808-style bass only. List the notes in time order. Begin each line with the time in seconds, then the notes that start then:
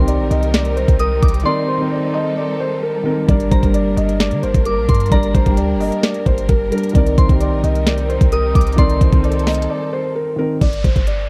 Already playing: C2
0.19 A#1
0.31 C2
0.88 C2
1.23 C2
3.29 G1
3.52 G1
3.97 G1
4.32 D3
4.43 G1
4.54 G1
4.77 A#1
4.89 G2
5.12 G1
5.35 G1
5.57 D2
5.75 G1
6.26 G1
6.49 G1
6.95 C2
7.18 C2
7.29 C2
7.52 A#1
7.64 C2
8.21 C2
8.55 C2
8.78 C2
9.01 C2
9.13 C2
10.61 G1
10.84 G1